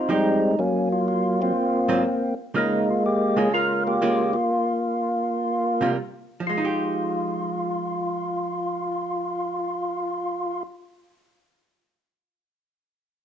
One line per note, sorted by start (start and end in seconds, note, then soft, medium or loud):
0.00 0.54 C4 medium
0.09 0.38 F3 medium
0.09 0.56 G3 medium
0.09 0.39 G#3 medium
0.09 0.56 G#3 medium
0.09 0.39 D#4 medium
0.09 0.60 D#4 loud
0.09 0.39 G4 medium
0.59 1.52 F#3 medium
0.59 1.41 A#3 medium
0.59 0.89 C#4 medium
0.92 1.07 F4 medium
1.08 1.41 F4 medium
1.42 2.35 A#3 medium
1.42 2.34 C4 medium
1.42 2.02 F4 medium
1.88 2.03 G#2 medium
1.88 2.03 F#3 medium
1.88 2.03 C4 medium
1.88 2.03 F4 medium
2.54 2.83 C#3 medium
2.54 2.83 G#3 soft
2.54 3.49 G#3 medium
2.54 2.84 A#3 medium
2.54 3.49 A#3 medium
2.54 2.89 D#4 medium
2.54 2.84 F4 medium
2.90 3.04 F4 medium
3.06 3.38 G4 medium
3.37 3.98 C#3 medium
3.37 3.98 G#3 medium
3.37 3.98 A#3 medium
3.37 3.99 F4 medium
3.37 3.53 G#4 medium
3.54 4.32 F4 medium
3.54 3.84 A#4 loud
3.87 4.33 A#3 medium
3.87 4.36 G4 medium
4.02 4.30 C#3 medium
4.02 4.31 G#3 medium
4.02 4.31 A#3 medium
4.02 4.31 F4 medium
4.33 5.93 A#3 medium
4.33 5.92 F4 medium
5.81 5.95 C3 medium
5.81 5.96 G3 medium
5.81 5.96 A#3 medium
5.81 5.96 F4 medium
6.40 10.60 F3 medium
6.47 10.69 G#3 medium
6.47 10.63 F4 medium
6.58 10.77 D#4 medium
6.65 10.85 G4 medium